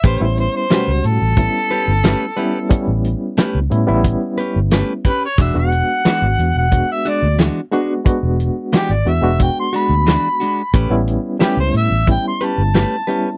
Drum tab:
HH |xxxxxxxx|xxxxxxxx|xxxxxxxx|xxxxxxxx|
SD |--o---o-|--o---o-|--o---o-|--o---o-|
BD |o---o---|o---o--o|o---o---|o---o---|

HH |xxxxxxxx|
SD |--o---o-|
BD |o---o---|